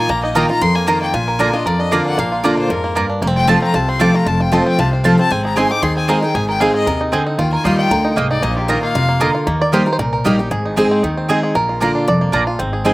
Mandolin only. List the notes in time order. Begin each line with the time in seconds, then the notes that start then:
0.35 A#3 F4 D#5 A#5
0.87 A#3 F4 D#5 A#5
1.39 A#3 F4 D5 A#5
1.91 A#3 F4 D5 A#5
2.43 A#3 F4 D5 A#5
2.95 A#3 F4 D5 A#5
3.47 C4 F4 C5 A5
3.99 C4 F4 C5 A5
4.52 C4 F4 C5 A5
5.04 C4 F4 C5 A5
5.56 C4 G#4 D#5 G#5
6.08 C4 G#4 D#5 G#5
6.60 C4 G#4 D#5 G#5
7.12 C4 G#4 D#5 G#5
7.64 A#3 F4 D#5 G5
8.16 A#3 F4 D#5 G5
8.68 A#3 F4 D#5 A#5
9.20 A#3 F4 D#5 A#5
9.72 A#3 G4 D#5 G5
10.24 A#3 G4 D#5 G5
10.76 C4 G#4 D#5 G#5
11.28 C4 G#4 D#5 G#5
11.80 A#3 F4 D5 A#5
12.32 A#3 F4 D5 A#5
12.85 C4 G#4 D#5 G#5